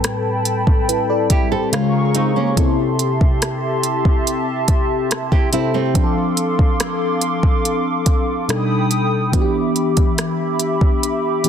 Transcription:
Already playing: A2 G3 C4 A4 B4 G5 A5 B5
0.04 cross-stick, closed hi-hat
0.45 closed hi-hat
0.67 kick
0.89 E4 B4, closed hi-hat
1.10 A4 D5
1.30 E4 G4, kick, closed hi-hat
1.52 G4 A4 C5
1.72 C#3 G#3 C#4 F4 G#4 A#4 F5 A#5 C#6, cross-stick, closed hi-hat
2.15 C4 D#4, closed hi-hat
2.36 A#3 C#4
2.56 C3 C4 E4 G4 A4 E5 A5 C6, kick, closed hi-hat
2.99 closed hi-hat
3.21 kick
3.42 cross-stick, closed hi-hat
3.83 closed hi-hat
4.05 kick
4.27 closed hi-hat
4.68 kick, closed hi-hat
5.11 cross-stick, closed hi-hat
5.32 E4 G4, kick
5.52 C3 C4 E4 A4, closed hi-hat
5.74 A3 C4
5.94 F3 C4 D4 G4 A4 F5 C6 D6, kick, closed hi-hat
6.04 A4
6.37 closed hi-hat
6.59 kick
6.80 cross-stick, closed hi-hat
7.21 closed hi-hat
7.43 kick
7.65 closed hi-hat
8.06 kick, closed hi-hat
8.48 B2 G3 D4 D#4 A4 G5 B5 D#6, cross-stick, closed hi-hat
8.91 closed hi-hat
9.32 E3 B3 D4 F#4 G4 E5 B5 D6, kick, closed hi-hat
9.42 G4
9.76 closed hi-hat
9.97 kick, closed hi-hat
10.18 cross-stick, closed hi-hat
10.60 closed hi-hat
10.81 kick
11.03 closed hi-hat
11.44 E3 B3 D4 G4, closed hi-hat

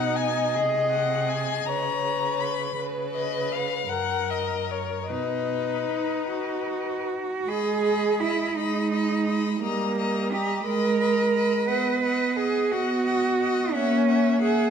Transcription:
Already playing: B2 D#4 D#5 F#5
0.16 G#5
0.55 C3 G#4
0.90 F#5
1.12 G#4
1.29 G#5
1.66 C#3 B4 C#5 A#5
2.40 B5
2.78 C#3 B4
3.14 D#5
3.52 F5
3.89 F#2 A#4 F#5
4.30 D#5
4.71 C#5
5.10 B2 D#4 B4 D#5
5.90 D#4
6.30 F#4
7.48 G#3 G#4 D#5 B5
7.83 D#5 B5
8.20 E4 D#5 B5
8.56 G#3 D#4 D#5 B5
8.91 D#5 B5
9.26 D#5 B5
9.61 G3 A#3 D#5 A#5
9.97 D#5 A#5
10.32 G4 D#5 A#5
10.65 G#3 A#4 D#5 B5
11.00 D#5 B5
11.33 D#5 B5
11.67 B3 B4 D#5 F#5
12.03 D#5 F#5
12.37 G#4 D#5 F#5
12.70 B3 F#4 D#5 F#5
13.04 D#5 F#5
13.40 D#5 F#5
13.72 A#3 C#4 E5 F#5
14.08 E5 F#5
14.39 G#4 F#5
14.43 E5

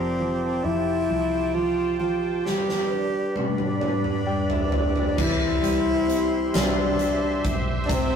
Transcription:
Already playing: F1 F3 C4 G4 C5 G5 A5
0.20 F3
0.64 F1 F3 E4
1.09 C2 F3
1.54 F3 F4
1.99 F3 F4
2.45 G3 G4 B4 D5 B5, snare
2.69 snare
2.90 D4
3.35 G3 D4, high tom
3.58 mid tom
3.80 D4, mid tom
4.04 mid tom
4.27 G3 G5
4.50 E5, floor tom
4.72 D4 D5, floor tom
4.96 floor tom
5.17 C2 E3 E4 G4 C5 E5 C6, kick, crash
5.62 G3, closed hi-hat
6.07 C4, closed hi-hat
6.53 C2 G3, snare, closed hi-hat
6.57 D4
6.99 closed hi-hat
7.44 B1, kick, closed hi-hat
7.85 C3 D4
7.89 C2 C4 G4 A5, kick, closed hi-hat

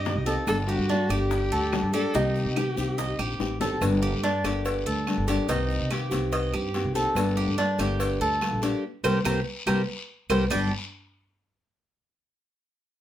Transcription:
Already playing: G2 G4 D#5
0.05 D#3 A#3 C4 G4, high bongo, low bongo, short guiro, maracas
0.16 C2
0.26 D#3 A#3 C4 G4 A4, high bongo, short guiro, maracas
0.46 G1 D3 G3 A#3 D4 A4, high bongo, long guiro, claves, maracas
0.68 F#4 G4, maracas
0.78 G2
0.88 G3 A#3 D4 A4, high bongo, short guiro, maracas
1.09 G1 G3 A#3 D4 G4 A4, short guiro, claves, maracas
1.31 high bongo, long guiro, maracas
1.51 D2 A4, maracas
1.72 G3 A#3 D4 A4, high bongo, low bongo, short guiro, claves, maracas
1.83 G2
1.93 G3 A#3 D4 G4 A4, short guiro, maracas
2.14 C2 C3 D#3 A#3 C4 D#4 G4, high bongo, long guiro, maracas
2.35 maracas
2.46 C3
2.56 D#3 A#3 C4 G4, high bongo, short guiro, claves, maracas
2.76 C2 D#3 A#3 C4 G4, high bongo, short guiro, maracas
2.98 D#5, high bongo, long guiro, maracas
3.19 A#1 G4, high bongo, claves, maracas
3.39 A1 D#3 A#3 C4 G4, high bongo, short guiro, maracas
3.60 G1 D#3 A#3 C4 G4 A4, low bongo, short guiro, maracas
3.81 G1 D3 G3 A#3 D4 A4, cowbell, long guiro, claves, maracas
4.02 G4, maracas
4.13 G2
4.23 G3 A#3 D4 A4, cowbell, short guiro, maracas
4.44 G1 G3 A#3 D4 G4 A4, cowbell, short guiro, claves, maracas
4.65 cowbell, long guiro, maracas
4.86 D2 A4, maracas
5.06 G3 A#3 D4 A4, cowbell, short guiro, claves, maracas
5.17 G1
5.28 G3 A#3 D4 G4 A4, cowbell, short guiro, maracas
5.48 C2 C3 D#3 A#3 C4 D#4 G4, cowbell, long guiro, maracas
5.70 maracas
5.80 C3
5.90 D#3 A#3 C4 G4, cowbell, short guiro, claves, maracas
6.11 C2 D#3 A#3 C4 G4, cowbell, short guiro, maracas
6.32 D#5, cowbell, long guiro, maracas
6.53 G2 G4, claves, maracas
6.74 D#3 A#3 C4 G4, cowbell, short guiro, maracas
6.84 C2
6.95 D#3 A#3 C4 G4 A4, short guiro, maracas
7.15 G1 D3 G3 A#3 D4 A4, cowbell, long guiro, claves, maracas
7.37 G4, maracas
7.47 G2
7.57 G3 A#3 D4 A4, cowbell, short guiro, maracas
7.78 G1 G3 A#3 D4 G4 A4, cowbell, short guiro, claves, maracas
8.00 cowbell, long guiro, maracas
8.20 D2 A4, maracas
8.41 G3 A#3 D4 A4, cowbell, short guiro, claves, maracas
8.51 A#1
8.62 G3 A#3 D4 G4 A4, cowbell, short guiro, maracas
9.03 C2 G3 A#3 C4 G4 A#4 C5, cowbell, long guiro, claves, maracas
9.24 C2 G3 A#3 C4 G4 A#4 C5, cowbell, long guiro, claves, maracas
9.66 C2 G3 A#3 C4 G4 A#4 C5, cowbell, claves, maracas
10.30 C2 G3 A#3 C4 G4 A#4 C5, cowbell, long guiro, claves, maracas
10.50 G1 G2 D3 G3 A#3 D4 G4 A4, low bongo, long guiro, claves, maracas

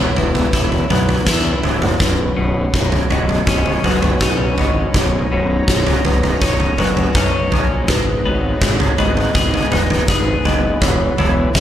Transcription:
Already playing: E2 B2 E3 F#3 B3 E4 B4 C#5
0.16 E1 E3 B4, floor tom
0.35 floor tom
0.53 E1 E4 C#5, kick, floor tom
0.72 floor tom
0.90 B1 B3 B4, floor tom, mid tom
1.09 floor tom
1.27 E2 E4, kick, snare
1.63 C#1 E3 C#5, floor tom
1.82 mid tom
2.00 B0 B1 C#4 D#4 B4, kick, floor tom
2.36 B0 B2 C#5
2.74 B0 F#2, kick
2.92 floor tom
3.10 B0 B2 D#5, floor tom
3.29 floor tom
3.47 B0 C#4, kick, floor tom
3.66 floor tom
3.83 F#1 F#3 B4, floor tom, mid tom
4.02 floor tom
4.21 B1 C#4, kick, mid tom
4.58 G#1 B2 D#5, floor tom
4.94 B0 B1 C#5 A#5, kick, floor tom
5.31 B0 B2 C#5
5.68 B0 F#2, kick
5.87 floor tom
6.05 B0 B4, floor tom
6.23 floor tom
6.41 B0 C#4 C#5, kick, floor tom
6.60 floor tom
6.78 F#1 F#3 B4, floor tom, mid tom
6.97 floor tom
7.15 B1 C#4, kick, mid tom
7.51 A#1 C#5, floor tom
7.88 G#1 G#2 G#3 B3 D#4 B4, kick, floor tom
8.24 G#1 B3 C#5
8.61 G#1 G#3, kick
8.80 floor tom
8.98 G#1 B3 D#5, floor tom
9.17 floor tom
9.35 G#1 G#4, kick, floor tom
9.54 floor tom
9.72 D#1 D#4 B4, floor tom, mid tom
9.90 floor tom
10.08 G#1 G#4, kick, mid tom
10.45 F#1 B3 D#5, floor tom
10.82 E1 E2 F#3 E4 C#5, kick, floor tom
11.18 E1 E3 C#5, floor tom
11.55 E1 B2, kick, snare

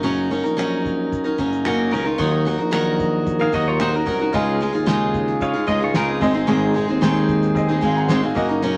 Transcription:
Already playing: F#1
0.03 F#3 C#4 D#4 A#4, shaker
0.31 F#3 C#4 D#4 A#4, shaker
0.43 A#1 C#4 D#4 A#4, shaker
0.57 F#3 C#4 D#4 A#4, finger snap, shaker
0.86 kick, shaker
1.12 kick, shaker
1.24 C#4 D#4 A#4
1.38 F#1 F#3 C#4 D#4 A#4, kick, shaker
1.52 shaker
1.65 F#3 A#3 C#4 D#4 F#4 A#4, finger snap, shaker
1.91 C#2 F#3 C#4 D#4 A#4, shaker
2.04 C#4 D#4 F4 A#4 C#5
2.18 D#2 D#3 F#3 D#4 F#4 A#4, kick, shaker
2.45 F#3 D#4 F#4 A#4, shaker
2.58 A#1 D#4 F#4 A#4
2.71 D#3 F#3 D#4 F#4 A#4, finger snap, shaker
2.99 kick, shaker
3.27 kick, shaker
3.39 D#4 F#4 G#4 A#4 F5
3.52 D#2 F#3 D#4 F#4 A#4 D#5, kick, shaker
3.68 F4 C#5
3.80 D#3 F#3 D#4 F#4 A#4 C5, finger snap, shaker
3.93 C#4 D#4 F#4 A#4
4.06 C2 F#3 D#4 F#4 A#4, kick, shaker
4.19 D#4 F#4 A#4
4.32 C#2 C#3 G#3 C#4 D#4 F4 G#4 D#5, kick, shaker
4.60 G#3 D#4 F4 G#4, shaker
4.72 D#2 D#4 F4 G#4
4.86 C#3 G#3 D#4 F4 G#4, snare, shaker
5.14 kick, shaker
5.27 snare
5.41 C#4 F4 G#4 C#5 F5, kick, shaker
5.53 D#4 F4 G#4
5.67 C#2 G#3 C#4 D#4 F4 G#4 D#5, kick, shaker
5.80 D#4 F4 G#4 C#5
5.84 F4
5.94 C#3 G#3 C#4 D#4 F4 G#4 A#4, snare, shaker
6.09 C4 G#4
6.21 G#1 G#3 C4 D#4 G#4 D#5, kick, shaker
6.33 G#3 C4 D#4 G#4
6.47 G#1 G#2 D#3 G#3 C4 D#4 G#4, shaker
6.74 G#3 C4 D#4 G#4, shaker
6.88 D#2 G#3 C4 D#4 G#4
7.01 G#2 D#3 G#3 C4 D#4 G#4, snare, shaker
7.29 kick, shaker
7.42 snare, shaker
7.55 C4 G#4 D#5, kick, shaker
7.69 G#3 C4 D#4 G#4
7.81 G#1 G#3 C4 D#4 G#4 F5 G#5, kick, shaker
7.96 F#5 A#5
8.08 G#2 D#3 G#3 C4 D#4 G#4 G#5 C6, snare, shaker
8.22 G#3 C4 D#4 G#4 F5 G#5
8.35 F#1 F#3 A#3 C#4 D#4 F#4 A#4 D#5, kick, shaker
8.49 C#4 D#4 A#4
8.62 F#3 C#4 D#4 A#4, shaker

